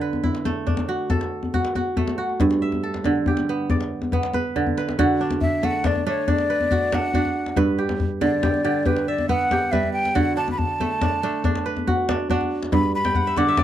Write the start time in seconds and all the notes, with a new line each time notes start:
Already playing: D3 B3
0.01 B4
0.13 djembe tone
0.24 E4, djembe bass
0.35 djembe slap
0.45 A3, djembe slap, djembe tone
0.67 D4, djembe slap, djembe bass
0.77 djembe slap, djembe tone
0.89 F#4
1.10 A4, djembe tone, djembe bass
1.21 djembe slap
1.43 djembe tone
1.54 F#4, djembe bass
1.65 djembe slap
1.75 F#4, djembe tone
1.97 A3, djembe bass
2.07 djembe slap, djembe tone
2.18 F#4
2.29 djembe slap
2.40 G2, djembe tone, djembe bass
2.51 djembe slap
2.62 E5, djembe slap
2.72 djembe tone
2.83 A4
2.94 djembe slap
3.04 D3, djembe tone
3.16 djembe slap
3.26 G4, djembe bass
3.37 djembe slap, djembe tone
3.49 B3
3.70 D5, djembe tone, djembe bass
3.81 djembe slap
4.02 djembe tone
4.12 B3, djembe slap, djembe bass
4.23 djembe slap
4.33 B4, djembe tone
4.56 D3, djembe bass
4.67 djembe bass
4.77 B4, djembe slap
4.89 djembe slap
4.99 D3 F#4, djembe slap, djembe tone, djembe bass
5.09 djembe slap
5.21 D4
5.30 djembe slap, djembe tone
5.41 E5, djembe slap, djembe bass
5.63 A3 F#5, djembe tone
5.84 D4 D5, djembe slap, djembe bass
5.95 djembe tone
6.07 A3 D4 C#5
6.28 D4 D5, djembe tone, djembe bass
6.38 djembe slap
6.49 B4, djembe slap
6.61 djembe tone
6.71 F#4, djembe bass
6.92 D4 F#5, djembe slap, djembe tone
7.03 djembe slap
7.14 D4 F#4, djembe bass
7.25 djembe tone
7.46 djembe slap
7.56 G2 B4, djembe slap, djembe tone, djembe bass
7.67 djembe slap
7.78 G4
7.89 djembe slap, djembe tone
8.00 djembe slap, djembe bass
8.21 D3 D5, djembe tone
8.43 G4, djembe slap, djembe bass
8.54 djembe tone
8.64 D3 G4, djembe slap
8.86 G4 B4, djembe tone, djembe bass
8.96 djembe slap
9.08 D5 E5, djembe slap
9.18 djembe tone
9.29 B3 F#5, djembe bass
9.51 G4, djembe slap, djembe tone
9.62 djembe slap
9.72 G3 B4 E5, djembe bass
9.83 djembe tone
9.93 G5
10.05 djembe slap
10.15 D3 F#4 F#5, djembe slap, djembe tone, djembe bass
10.27 djembe slap
10.37 D4 A5
10.48 djembe slap, djembe tone
10.52 B5
10.58 A5, djembe slap, djembe bass
10.80 A3, djembe tone
11.01 D4, djembe slap, djembe bass
11.23 A3 D4
11.44 D4, djembe tone, djembe bass
11.55 djembe slap
11.66 B4, djembe slap
11.77 djembe tone
11.87 F#4, djembe bass
12.09 D4, djembe slap, djembe tone
12.20 djembe slap
12.30 D4 F#4, djembe bass
12.41 djembe tone
12.63 djembe slap
12.72 G2 B5, djembe tone, djembe bass
12.83 djembe slap
12.95 B5
13.05 G5, djembe slap, djembe tone
13.15 F#5, djembe slap, djembe bass
13.27 E5
13.36 D3 F#5 D6, djembe tone
13.47 E5, djembe slap
13.57 D5, djembe slap, djembe bass